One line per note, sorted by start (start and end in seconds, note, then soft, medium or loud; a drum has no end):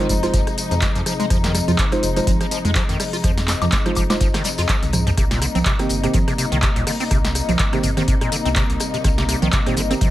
0.00 5.13 C3 medium
0.00 5.14 F3 medium
0.00 0.13 G#3 medium
0.00 5.14 G#3 medium
0.00 0.13 D#4 medium
0.00 5.13 D#4 medium
0.00 0.13 F4 medium
0.00 0.13 C5 loud
0.09 0.27 F1 medium
0.09 0.14 G3 medium
0.09 kick medium
0.09 closed hi-hat medium
0.09 open hi-hat loud
0.09 tambourine medium
0.23 0.31 G#3 medium
0.23 0.31 D#4 medium
0.23 0.26 F4 medium
0.23 0.31 F4 medium
0.23 0.31 C5 loud
0.23 cross-stick soft
0.23 snare medium
0.23 closed hi-hat soft
0.23 tambourine soft
0.34 0.43 F1 medium
0.34 0.41 F3 medium
0.34 kick loud
0.34 closed hi-hat medium
0.34 closed hi-hat loud
0.34 tambourine soft
0.47 cross-stick medium
0.47 closed hi-hat soft
0.47 tambourine soft
0.58 closed hi-hat medium
0.58 open hi-hat loud
0.58 tambourine medium
0.71 0.87 F2 loud
0.71 0.75 F3 medium
0.71 closed hi-hat soft
0.71 tambourine soft
0.81 0.86 G#3 medium
0.81 kick loud
0.81 cross-stick soft
0.81 snare loud
0.81 clap loud
0.81 closed hi-hat medium
0.81 tambourine soft
0.95 1.03 F2 medium
0.95 1.01 F3 medium
0.95 closed hi-hat soft
0.95 tambourine soft
1.06 1.14 F3 medium
1.06 cross-stick medium
1.06 closed hi-hat medium
1.06 open hi-hat loud
1.06 tambourine medium
1.20 1.26 G#3 loud
1.20 closed hi-hat soft
1.20 tambourine soft
1.30 1.61 F2 loud
1.30 1.38 F3 medium
1.30 kick loud
1.30 cross-stick medium
1.30 closed hi-hat loud
1.30 closed hi-hat medium
1.30 tambourine soft
1.44 1.53 D#3 medium
1.44 snare medium
1.44 closed hi-hat soft
1.44 tambourine soft
1.54 1.59 G3 medium
1.54 cross-stick soft
1.54 closed hi-hat medium
1.54 open hi-hat loud
1.54 tambourine medium
1.68 1.75 F2 medium
1.68 1.72 F4 medium
1.68 closed hi-hat soft
1.68 tambourine soft
1.68 low conga medium
1.78 1.86 F3 medium
1.78 kick loud
1.78 snare loud
1.78 clap loud
1.78 closed hi-hat medium
1.78 tambourine soft
1.92 2.06 G#3 medium
1.92 2.06 D#4 medium
1.92 2.06 F4 medium
1.92 2.06 C5 loud
1.92 cross-stick medium
1.92 closed hi-hat soft
1.92 tambourine soft
2.03 2.20 F1 medium
2.03 closed hi-hat medium
2.03 open hi-hat loud
2.03 tambourine medium
2.16 2.20 F3 medium
2.16 2.25 G#3 loud
2.16 2.25 D#4 medium
2.16 2.25 F4 medium
2.16 2.25 C5 loud
2.16 cross-stick soft
2.16 closed hi-hat soft
2.16 tambourine soft
2.27 2.36 F1 medium
2.27 2.32 G#3 medium
2.27 kick loud
2.27 closed hi-hat medium
2.27 closed hi-hat loud
2.27 tambourine soft
2.27 low conga medium
2.41 2.47 F3 medium
2.41 cross-stick medium
2.41 closed hi-hat soft
2.41 tambourine soft
2.51 2.59 F3 medium
2.51 closed hi-hat medium
2.51 open hi-hat loud
2.51 tambourine medium
2.65 2.80 F2 loud
2.65 2.71 G#3 loud
2.65 closed hi-hat soft
2.65 tambourine soft
2.75 2.83 F3 medium
2.75 kick loud
2.75 cross-stick soft
2.75 snare loud
2.75 clap loud
2.75 closed hi-hat medium
2.75 tambourine soft
2.89 2.96 F2 medium
2.89 2.98 D#3 medium
2.89 closed hi-hat soft
2.89 tambourine soft
3.00 3.04 G3 medium
3.00 cross-stick medium
3.00 open hi-hat loud
3.00 open hi-hat medium
3.00 tambourine medium
3.13 3.17 F4 medium
3.13 closed hi-hat soft
3.13 tambourine soft
3.24 3.55 F2 loud
3.24 3.31 F3 medium
3.24 kick loud
3.24 cross-stick medium
3.24 closed hi-hat loud
3.24 closed hi-hat medium
3.24 tambourine soft
3.38 snare medium
3.38 closed hi-hat soft
3.38 tambourine soft
3.48 cross-stick soft
3.48 snare medium
3.48 clap medium
3.48 closed hi-hat medium
3.48 open hi-hat loud
3.48 tambourine medium
3.62 3.69 F2 medium
3.62 3.65 F3 medium
3.62 closed hi-hat soft
3.62 tambourine soft
3.62 low conga medium
3.62 high woodblock medium
3.72 3.77 G#3 medium
3.72 kick loud
3.72 snare loud
3.72 clap loud
3.72 closed hi-hat medium
3.72 closed hi-hat loud
3.72 tambourine soft
3.86 3.92 F3 medium
3.86 4.00 G#3 loud
3.86 4.00 D#4 medium
3.86 4.00 F4 medium
3.86 4.00 C5 loud
3.86 cross-stick medium
3.86 closed hi-hat soft
3.86 tambourine soft
3.95 4.14 F1 medium
3.95 4.04 F3 medium
3.95 kick medium
3.95 closed hi-hat medium
3.95 open hi-hat loud
3.95 tambourine medium
3.95 high woodblock medium
4.10 4.16 G#3 loud
4.10 4.18 G#3 loud
4.10 4.18 D#4 medium
4.10 4.18 F4 medium
4.10 4.18 C5 loud
4.10 cross-stick soft
4.10 snare medium
4.10 closed hi-hat soft
4.10 tambourine soft
4.10 high woodblock medium
4.20 4.30 F1 loud
4.20 4.28 F3 medium
4.20 kick loud
4.20 snare loud
4.20 closed hi-hat medium
4.20 tambourine soft
4.34 4.43 D#3 medium
4.34 cross-stick medium
4.34 snare loud
4.34 snare medium
4.34 closed hi-hat soft
4.34 closed hi-hat medium
4.34 tambourine soft
4.44 4.49 G3 medium
4.44 snare loud
4.44 closed hi-hat medium
4.44 open hi-hat loud
4.44 tambourine medium
4.58 4.66 F2 medium
4.58 4.62 F4 medium
4.58 snare loud
4.58 closed hi-hat medium
4.58 closed hi-hat soft
4.58 tambourine soft
4.69 4.77 F3 medium
4.69 kick loud
4.69 cross-stick soft
4.69 clap loud
4.69 closed hi-hat loud
4.69 tambourine soft
4.83 5.12 C2 medium
4.83 closed hi-hat soft
4.83 high tom medium
4.83 tambourine soft
4.93 cross-stick medium
4.93 closed hi-hat medium
4.93 open hi-hat loud
4.93 mid tom medium
4.93 tambourine medium
4.93 low conga medium
5.07 5.10 F3 medium
5.07 closed hi-hat soft
5.07 mid tom medium
5.07 tambourine soft
5.17 5.48 C2 loud
5.17 10.11 C3 medium
5.17 5.25 C3 medium
5.17 10.11 G3 medium
5.17 10.11 A#3 medium
5.17 10.11 D#4 medium
5.17 kick loud
5.17 cross-stick medium
5.17 closed hi-hat loud
5.17 closed hi-hat medium
5.17 tambourine soft
5.31 5.40 A#2 medium
5.31 snare medium
5.31 closed hi-hat soft
5.31 tambourine soft
5.42 5.46 D3 medium
5.42 cross-stick soft
5.42 closed hi-hat medium
5.42 open hi-hat loud
5.42 tambourine medium
5.55 5.62 C2 medium
5.55 5.59 C4 medium
5.55 closed hi-hat soft
5.55 tambourine soft
5.55 low conga loud
5.65 5.73 C3 medium
5.65 kick loud
5.65 snare loud
5.65 clap loud
5.65 closed hi-hat loud
5.65 closed hi-hat medium
5.65 tambourine soft
5.79 5.93 D#3 loud
5.79 5.93 A#3 medium
5.79 5.93 C4 medium
5.79 5.93 G4 loud
5.79 cross-stick medium
5.79 closed hi-hat soft
5.79 tambourine soft
5.89 6.07 G1 medium
5.89 closed hi-hat medium
5.89 open hi-hat loud
5.89 tambourine medium
6.03 6.07 C3 medium
6.03 6.12 D#3 loud
6.03 6.12 A#3 medium
6.03 6.12 C4 medium
6.03 6.12 G4 loud
6.03 cross-stick soft
6.03 closed hi-hat soft
6.03 tambourine soft
6.14 6.23 G1 medium
6.14 6.19 D#3 medium
6.14 kick loud
6.14 closed hi-hat medium
6.14 tambourine soft
6.14 low conga loud
6.28 6.34 C3 medium
6.28 cross-stick medium
6.28 closed hi-hat soft
6.28 tambourine soft
6.38 6.46 C3 medium
6.38 closed hi-hat medium
6.38 open hi-hat loud
6.38 tambourine medium
6.52 6.67 C2 medium
6.52 6.58 D#3 loud
6.52 closed hi-hat soft
6.52 tambourine soft
6.62 6.70 C3 medium
6.62 kick loud
6.62 cross-stick soft
6.62 snare loud
6.62 clap loud
6.62 closed hi-hat loud
6.62 tambourine soft
6.76 6.83 C2 medium
6.76 6.85 A#2 medium
6.76 closed hi-hat soft
6.76 tambourine soft
6.87 6.91 D3 medium
6.87 cross-stick medium
6.87 open hi-hat loud
6.87 open hi-hat medium
6.87 tambourine medium
7.00 7.04 C4 medium
7.00 closed hi-hat soft
7.00 tambourine soft
7.11 7.42 C2 loud
7.11 7.18 C3 medium
7.11 kick loud
7.11 cross-stick medium
7.11 closed hi-hat medium
7.11 closed hi-hat loud
7.11 tambourine soft
7.25 snare medium
7.25 closed hi-hat soft
7.25 tambourine soft
7.35 cross-stick soft
7.35 closed hi-hat medium
7.35 open hi-hat loud
7.35 tambourine medium
7.49 7.56 C2 medium
7.49 7.52 C3 medium
7.49 closed hi-hat soft
7.49 tambourine soft
7.49 low conga loud
7.59 7.64 D#3 medium
7.59 kick loud
7.59 snare loud
7.59 clap loud
7.59 closed hi-hat loud
7.59 closed hi-hat medium
7.59 tambourine soft
7.73 7.79 C3 medium
7.73 7.87 D#3 medium
7.73 7.87 A#3 medium
7.73 7.87 C4 medium
7.73 7.87 G4 loud
7.73 cross-stick medium
7.73 closed hi-hat soft
7.73 tambourine soft
7.83 8.01 G1 medium
7.83 7.91 C3 medium
7.83 kick medium
7.83 closed hi-hat medium
7.83 open hi-hat loud
7.83 tambourine medium
7.97 8.03 D#3 loud
7.97 8.05 D#3 loud
7.97 8.05 A#3 medium
7.97 8.05 C4 medium
7.97 8.05 G4 loud
7.97 cross-stick soft
7.97 snare soft
7.97 closed hi-hat soft
7.97 tambourine soft
8.08 8.17 G1 medium
8.08 8.15 C3 medium
8.08 kick loud
8.08 closed hi-hat medium
8.08 closed hi-hat loud
8.08 tambourine soft
8.21 8.30 A#2 medium
8.21 cross-stick medium
8.21 closed hi-hat soft
8.21 tambourine soft
8.32 8.36 D3 medium
8.32 closed hi-hat medium
8.32 open hi-hat loud
8.32 tambourine medium
8.45 8.61 C2 loud
8.45 8.49 C4 medium
8.45 closed hi-hat soft
8.45 tambourine soft
8.56 8.64 C3 medium
8.56 kick loud
8.56 cross-stick soft
8.56 snare loud
8.56 clap loud
8.56 closed hi-hat medium
8.56 tambourine soft
8.70 8.77 C2 medium
8.70 closed hi-hat soft
8.70 tambourine soft
8.80 cross-stick medium
8.80 closed hi-hat medium
8.80 open hi-hat loud
8.80 tambourine medium
8.94 8.97 C3 medium
8.94 closed hi-hat soft
8.94 tambourine soft
9.04 9.35 C2 loud
9.04 9.09 D#3 medium
9.04 kick loud
9.04 cross-stick medium
9.04 closed hi-hat medium
9.04 tambourine soft
9.18 9.24 C3 medium
9.18 snare medium
9.18 closed hi-hat soft
9.18 tambourine soft
9.29 9.36 C3 medium
9.29 cross-stick soft
9.29 closed hi-hat medium
9.29 open hi-hat loud
9.29 tambourine medium
9.42 9.49 C2 medium
9.42 9.48 D#3 loud
9.42 closed hi-hat soft
9.42 tambourine soft
9.42 low conga loud
9.52 9.60 C3 medium
9.52 kick loud
9.52 snare loud
9.52 clap loud
9.52 closed hi-hat medium
9.52 tambourine soft
9.66 9.75 A#2 medium
9.66 9.80 D#3 loud
9.66 9.80 A#3 medium
9.66 9.80 C4 medium
9.66 9.80 G4 loud
9.66 cross-stick medium
9.66 closed hi-hat soft
9.66 tambourine soft
9.77 9.94 G1 medium
9.77 9.82 D3 medium
9.77 closed hi-hat medium
9.77 open hi-hat loud
9.77 tambourine medium
9.90 9.99 D#3 loud
9.90 9.99 A#3 medium
9.90 9.94 C4 medium
9.90 9.99 C4 medium
9.90 9.99 G4 loud
9.90 cross-stick soft
9.90 closed hi-hat soft
9.90 tambourine soft
10.01 10.10 G1 medium
10.01 10.09 C3 medium
10.01 kick loud
10.01 closed hi-hat medium
10.01 tambourine soft
10.01 low conga medium